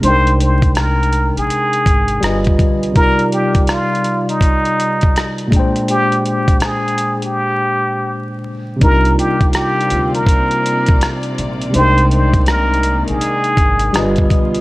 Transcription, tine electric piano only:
X:1
M:4/4
L:1/8
Q:"Swing 16ths" 1/4=82
K:Cm
V:1 name="Tine electric piano"
[C,A,DEBg]6 [D,G,F=Be]2 | [C,G,EFBd]6- [C,G,EFBd] [B,,A,Dcg]- | [B,,A,Dcg]6- [B,,A,Dcg] z | [C,G,DEFB]8 |
[C,A,DEBg]6 [D,G,F=Be]2 |]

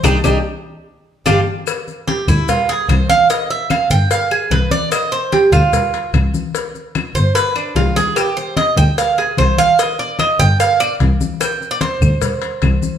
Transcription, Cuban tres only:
X:1
M:4/4
L:1/16
Q:1/4=148
K:Gphr
V:1 name="Cuban tres"
[DEG]2 [DEG]2 z8 [DFG]2 z2 | [K:Cm] z4 G2 =E2 F2 A2 c2 f2 | e2 =e2 f2 g2 f2 A2 =B2 d2 | e2 c2 G2 F6 z4 |
z6 c2 =B2 D2 F2 A2 | G2 c2 e2 g2 f2 A2 c2 f2 | e2 d2 e2 g2 f2 d2 z4 | g3 d c12 |]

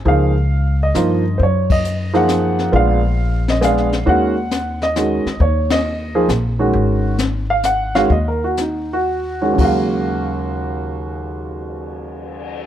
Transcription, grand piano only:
X:1
M:3/4
L:1/16
Q:"Swing" 1/4=135
K:Ebm
V:1 name="Grand piano"
f6 e6 | [=cd]2 e4 g6 | f6 e2 f4 | g6 e6 |
d2 e6 z4 | z6 f2 g2 f2 | (3e2 B2 G2 E2 G4- G z | G12- |
G12 |]
V:2 name="Grand piano"
[F,B,EA]2 z6 [F,B,EF]2 z2 | z6 [F,B,EA]6 | [A,C=DF]2 z6 [A,CDA]2 z2 | [E,A,DG]2 z6 [E,A,DG]2 z2 |
z6 [F,B,EA]2 z2 [E,A,DG]2- | [E,A,DG]4 z6 [E,A,DG]2 | z8 z2 [E,A,DG]2 | [E,,D,G,A,f]12- |
[E,,D,G,A,f]12 |]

